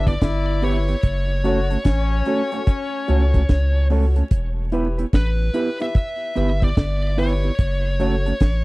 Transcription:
0.00 0.17 G1 medium
0.00 0.13 D4 medium
0.06 0.13 B3 medium
0.06 0.13 E4 medium
0.06 0.13 G4 medium
0.06 0.13 B4 medium
0.06 0.64 D5 loud
0.06 kick loud
0.06 closed hi-hat medium
0.21 0.95 G1 medium
0.21 0.85 E4 loud
0.21 kick loud
0.21 snare loud
0.21 closed hi-hat medium
0.62 0.77 B3 medium
0.62 0.87 E4 medium
0.62 0.77 E4 medium
0.62 0.87 G4 medium
0.62 0.77 G4 loud
0.62 0.88 B4 loud
0.62 0.77 B4 medium
0.62 3.87 C#5 medium
0.62 open hi-hat medium
0.88 0.95 B3 medium
0.88 0.95 E4 soft
0.88 0.95 G4 medium
0.88 0.95 B4 medium
0.88 closed hi-hat medium
1.03 1.77 F#1 loud
1.03 kick loud
1.03 closed hi-hat medium
1.44 1.58 A3 loud
1.44 1.59 C#4 medium
1.44 1.69 F#4 loud
1.44 1.77 F#4 loud
1.44 1.59 F#4 medium
1.44 1.69 A4 medium
1.44 1.59 A4 medium
1.44 1.70 C#5 loud
1.44 closed hi-hat medium
1.70 1.78 A3 medium
1.70 1.77 C#4 medium
1.70 1.77 F#4 medium
1.70 1.77 A4 medium
1.70 closed hi-hat medium
1.85 2.22 A1 medium
1.85 2.63 C#4 loud
1.85 kick loud
1.85 snare loud
1.85 closed hi-hat loud
2.25 2.41 A3 medium
2.25 2.41 C#4 loud
2.25 2.51 F#4 medium
2.25 2.41 F#4 medium
2.25 2.51 A4 medium
2.25 2.41 A4 loud
2.25 2.52 C#5 medium
2.25 closed hi-hat medium
2.52 2.59 A3 soft
2.52 2.59 C#4 soft
2.52 2.67 F#4 medium
2.52 2.59 F#4 medium
2.52 2.58 A4 medium
2.52 2.67 A4 medium
2.52 2.67 C#5 medium
2.52 closed hi-hat medium
2.67 3.45 C#4 loud
2.67 kick loud
2.67 closed hi-hat medium
3.08 3.45 C#2 loud
3.08 3.22 A3 medium
3.08 3.23 C#4 loud
3.08 3.33 F#4 loud
3.08 3.23 F#4 loud
3.08 3.33 A4 medium
3.08 3.23 A4 loud
3.08 3.33 C#5 loud
3.08 closed hi-hat medium
3.34 3.41 A3 soft
3.34 3.41 C#4 medium
3.34 3.41 F#4 medium
3.34 3.40 A4 medium
3.34 3.41 A4 soft
3.34 3.41 C#5 soft
3.34 kick loud
3.34 closed hi-hat medium
3.49 4.22 C#2 medium
3.49 kick loud
3.49 snare loud
3.49 closed hi-hat medium
3.90 4.04 A3 medium
3.90 4.04 C#4 medium
3.90 4.15 F#4 loud
3.90 4.05 F#4 medium
3.90 4.15 A4 medium
3.90 4.05 A4 loud
3.90 4.16 C#5 loud
3.90 open hi-hat medium
4.16 4.23 A3 soft
4.16 4.23 C#4 medium
4.16 4.23 F#4 medium
4.16 4.23 A4 medium
4.16 closed hi-hat medium
4.31 5.04 E1 loud
4.31 kick loud
4.31 closed hi-hat medium
4.72 4.86 B3 medium
4.72 4.97 E4 loud
4.72 4.87 E4 medium
4.72 4.97 G4 loud
4.72 4.87 G4 medium
4.72 4.98 B4 loud
4.72 4.87 B4 medium
4.72 closed hi-hat medium
4.98 5.05 B3 medium
4.98 5.05 E4 medium
4.98 5.05 G4 medium
4.98 5.04 B4 medium
4.98 closed hi-hat medium
5.13 5.50 A1 medium
5.13 5.77 B4 medium
5.13 kick loud
5.13 snare loud
5.13 closed hi-hat loud
5.54 5.68 B3 medium
5.54 5.68 E4 medium
5.54 5.79 E4 medium
5.54 5.69 G4 loud
5.54 5.79 G4 medium
5.54 5.69 B4 loud
5.54 5.80 B4 loud
5.54 closed hi-hat medium
5.80 5.87 B3 soft
5.80 5.94 E4 medium
5.80 5.87 E4 medium
5.80 5.86 G4 medium
5.80 5.95 G4 medium
5.80 5.86 B4 medium
5.80 5.95 B4 medium
5.80 6.64 E5 medium
5.80 closed hi-hat medium
5.95 kick loud
5.95 closed hi-hat medium
6.35 6.73 G1 medium
6.35 6.50 B3 loud
6.35 6.50 E4 loud
6.35 6.61 E4 medium
6.35 6.51 G4 loud
6.35 6.61 G4 medium
6.35 6.51 B4 loud
6.35 6.61 B4 medium
6.35 closed hi-hat medium
6.62 6.69 B3 medium
6.62 6.69 E4 medium
6.62 6.68 G4 medium
6.62 6.68 B4 medium
6.62 7.19 D5 medium
6.62 kick loud
6.62 closed hi-hat medium
6.77 7.50 G1 medium
6.77 kick loud
6.77 snare loud
6.77 closed hi-hat medium
7.17 7.32 B3 medium
7.17 7.43 E4 loud
7.17 7.32 E4 medium
7.17 7.32 G4 medium
7.17 7.43 G4 medium
7.17 7.33 B4 loud
7.17 7.43 B4 loud
7.17 8.64 C#5 loud
7.17 open hi-hat medium
7.43 7.51 B3 medium
7.43 7.51 E4 medium
7.43 7.50 G4 medium
7.43 7.50 B4 medium
7.43 closed hi-hat medium
7.59 8.32 F#1 loud
7.59 kick loud
7.59 closed hi-hat medium
7.99 8.14 A3 loud
7.99 8.14 C#4 loud
7.99 8.25 F#4 medium
7.99 8.14 F#4 loud
7.99 8.25 A4 loud
7.99 8.15 A4 loud
7.99 8.25 C#5 loud
7.99 closed hi-hat medium
8.26 8.33 A3 medium
8.26 8.33 C#4 medium
8.26 8.33 F#4 medium
8.26 8.32 A4 medium
8.26 closed hi-hat medium
8.40 8.64 A1 medium
8.40 kick loud
8.40 snare loud
8.40 closed hi-hat medium

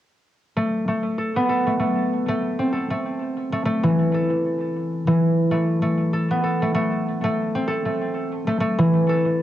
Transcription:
0.56 0.87 A3 medium
0.88 1.66 A3 medium
1.18 1.49 A4 medium
1.36 2.65 B3 medium
1.49 2.72 A4 medium
1.67 1.79 A3 medium
1.80 2.28 A3 medium
2.28 2.90 A3 medium
2.59 5.59 C4 medium
2.73 4.14 A4 medium
2.90 3.52 A3 medium
3.52 3.65 A3 medium
3.65 5.51 A3 medium
3.83 5.06 E3 medium
4.14 6.13 A4 medium
5.07 8.77 E3 medium
5.51 5.82 A3 medium
5.82 6.62 A3 medium
6.13 6.43 A4 medium
6.31 7.61 B3 medium
6.44 7.67 A4 medium
6.62 6.74 A3 medium
6.75 7.23 A3 medium
7.24 7.85 A3 loud
7.55 9.42 C4 medium
7.68 9.09 A4 medium
7.85 8.47 A3 medium
8.47 8.60 A3 medium
8.60 9.42 A3 medium
8.79 9.42 E3 medium
9.09 9.42 A4 medium

